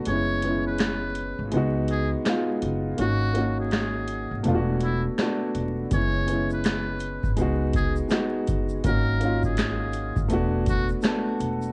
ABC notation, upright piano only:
X:1
M:4/4
L:1/8
Q:"Swing 16ths" 1/4=82
K:F#mix
V:1 name="Upright piano"
[G,B,CE] [G,B,CE]3 [G,B,DF]2 [G,B,D^E] z | [A,CDF] [A,CDF]3 [=A,B,=D^EF]2 [A,B,DF] z | [G,B,CE] [G,B,CE]3 [G,B,DF]2 [G,B,DF] z | [A,CDF] [A,CD^E]3 [=A,B,=DF]2 [A,B,D=A] z |]